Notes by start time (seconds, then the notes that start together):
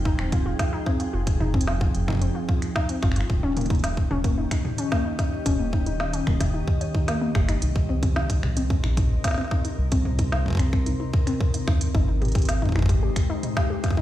Already playing: F1 F3 D#4 G#4 C5 G5
0.05 D#4, kick
0.19 D#1 C4, finger snap
0.32 F4, kick, closed hi-hat, mid tom
0.46 F4
0.59 kick, snare, closed hi-hat
0.73 D#4
0.86 C4, kick, snare
1.00 F4, closed hi-hat
1.13 F1 F4
1.27 kick, closed hi-hat
1.40 D#4, mid tom
1.54 C4, kick
1.61 closed hi-hat
1.67 F4, snare
1.81 F4, kick
1.95 F1, closed hi-hat
2.08 D#4, finger snap, kick
2.10 kick
2.13 kick
2.15 kick
2.17 kick
2.19 C4, kick, closed hi-hat
2.35 F4
2.48 F4, kick
2.62 finger snap, closed hi-hat
2.75 D#4, kick, snare
2.89 C4, closed hi-hat
3.03 G1 F4, finger snap, kick, snare
3.12 finger snap
3.16 F4, closed hi-hat
3.21 finger snap
3.30 D#1 D#3, kick
3.43 C#4
3.52 C#4
3.57 A#3, closed hi-hat, mid tom
3.61 closed hi-hat
3.66 G4, closed hi-hat, mid tom
3.70 D#4, kick, closed hi-hat
3.75 closed hi-hat, mid tom
3.79 D#5, closed hi-hat
3.84 D#4, snare, closed hi-hat
3.97 kick
4.11 D#1 C#4, mid tom
4.24 A#3, kick, closed hi-hat
4.38 D#4
4.51 D#4, finger snap, kick, closed hi-hat
4.65 mid tom
4.78 C#4, closed hi-hat
4.92 A#3, kick, snare
5.05 D#4
5.19 D#4, kick, snare, closed hi-hat
5.46 D#1 C#4, kick, closed hi-hat
5.59 A#3
5.73 D#4, kick
5.86 D#4, closed hi-hat
6.00 snare
6.13 C#4, closed hi-hat
6.27 D#1 A#3, finger snap, kick, mid tom
6.40 D#4, finger snap, kick, snare, closed hi-hat
6.54 D#4
6.68 kick
6.81 C#5, closed hi-hat
6.95 D#4, kick
7.08 A#3, finger snap, snare, closed hi-hat
7.21 A#3
7.35 G1 G4, finger snap, kick, snare
7.49 D#4, finger snap, closed hi-hat
7.62 C2 C3 D#4, closed hi-hat
7.76 kick
7.88 C4
8.03 C4, kick, closed hi-hat
8.16 D#4 A#4, snare
8.30 D#4, kick, closed hi-hat
8.43 C2, finger snap, mid tom
8.57 C4, closed hi-hat
8.70 C4, kick
8.84 A#1 D#4, finger snap
8.97 D#4, kick, closed hi-hat, mid tom
9.24 C4, kick, snare, closed hi-hat
9.28 snare
9.31 snare
9.34 snare
9.38 C4, snare
9.41 snare
9.44 snare
9.48 snare
9.51 D#4, kick, snare
9.65 D#4, closed hi-hat
9.78 C2
9.92 C4, kick, closed hi-hat
10.05 C4, mid tom
10.19 D#4, kick, closed hi-hat
10.32 D#4, snare
10.46 kick
10.48 kick
10.50 kick
10.53 kick
10.55 kick
10.57 C2 C4, finger snap, kick, closed hi-hat
10.73 C4, finger snap, kick
10.86 D#4, closed hi-hat
11.00 D#4
11.13 kick
11.27 C4, finger snap, closed hi-hat
11.40 C4, kick
11.54 D#4, closed hi-hat
11.68 D#2 D#4, finger snap, kick, snare
11.81 closed hi-hat
11.94 G#1 G#3 D#4, kick
12.07 D#4 G5
12.14 D#4
12.22 G4, closed hi-hat, mid tom
12.25 closed hi-hat
12.28 closed hi-hat
12.32 G4, kick, closed hi-hat
12.35 C5, closed hi-hat
12.39 closed hi-hat
12.42 closed hi-hat
12.45 snare, closed hi-hat
12.49 closed hi-hat
12.62 D#4, kick
12.65 kick
12.69 kick
12.72 G#1 D#4, kick
12.76 finger snap, kick, mid tom
12.79 kick
12.82 kick
12.86 G4, kick
12.89 kick, closed hi-hat
13.03 G4
13.16 finger snap, kick, closed hi-hat
13.30 D#4
13.43 D#4, closed hi-hat, mid tom
13.57 G4, kick, snare
13.70 G4
13.84 kick, snare, closed hi-hat
13.86 snare
13.88 kick, snare
13.91 snare
13.93 snare
13.95 D#4, kick, snare